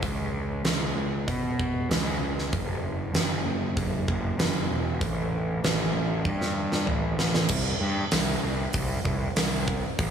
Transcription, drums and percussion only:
0.02 kick medium
0.02 open hi-hat soft
0.65 snare medium
0.65 open hi-hat soft
1.28 kick medium
1.28 open hi-hat soft
1.59 kick medium
1.91 snare loud
1.91 open hi-hat soft
2.39 snare soft
2.53 kick medium
2.53 open hi-hat soft
3.14 snare loud
3.14 open hi-hat soft
3.77 kick medium
3.77 open hi-hat soft
4.08 kick medium
4.39 snare loud
4.39 open hi-hat soft
5.01 kick loud
5.01 open hi-hat soft
5.64 snare loud
5.64 open hi-hat soft
6.25 kick medium
6.41 snare soft
6.72 snare medium
6.87 mid tom medium
7.19 snare medium
7.34 snare medium
7.49 kick loud
7.49 crash loud
8.11 snare medium
8.11 open hi-hat medium
8.73 kick loud
8.73 open hi-hat medium
9.05 kick medium
9.36 snare loud
9.36 open hi-hat medium
9.68 kick medium
9.99 kick loud
9.99 open hi-hat soft

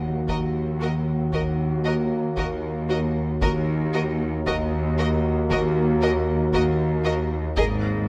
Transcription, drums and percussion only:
0.28 taiko medium
1.33 taiko medium
2.37 taiko medium
3.42 taiko medium
4.47 taiko medium
5.50 taiko medium
6.53 taiko medium
7.57 taiko medium

